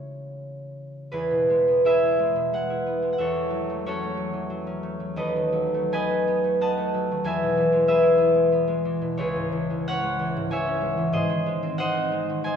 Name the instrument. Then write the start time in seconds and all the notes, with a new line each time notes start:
harp
Already playing: C#3 G#3 C#4 E4 C#5
1.12 E2 E4 G#4 B4
1.31 B2
1.50 G#3
1.68 B3
1.85 E4 G#4 B4 E5
2.03 B3
2.19 G#3
2.36 B2
2.53 G#3 F#5
2.70 E4
2.86 B3
3.02 G#3
3.13 F#5
3.18 E2 A4 C#5 E5
3.36 E3
3.50 F#3
3.69 A3
3.86 C#4 F#4 A4 C#5
4.03 A3
4.17 F#3
4.33 E3
4.50 F#3
4.67 C#4
4.83 A3
5.00 F#3
5.16 D#2 A4 B4 D#5
5.36 D#3
5.53 F#3
5.74 A3
5.92 B3 B4 D#5 G#5
6.10 F#4
6.28 B3
6.44 A3
6.61 B3 D#5 F#5 A5
6.77 A3
6.94 F#3
7.11 D#3
7.24 E2 B4 E5 G#5
7.43 B2
7.57 E3
7.73 G#3
7.88 B3 G#4 B4 E5
8.03 E4
8.18 B3
8.35 G#3
8.52 B3
8.68 G#3
8.85 E3
9.02 B2
9.17 C#2 E4 G#4 C#5
9.36 G#2
9.52 E3
9.70 G#3
9.88 C#4 C#5 F#5
10.03 G#3
10.19 E3
10.37 G#2
10.50 E3 C#5 E5 G#5
10.67 C#4
10.82 G#3
10.97 E3
11.13 G#2 G#4 C5 D#5
11.30 D#3
11.46 G#3
11.63 C4
11.78 D#4 C5 D#5 F#5
11.94 C4
12.12 G#3
12.30 D#3
12.44 G#3 C5 D#5 G#5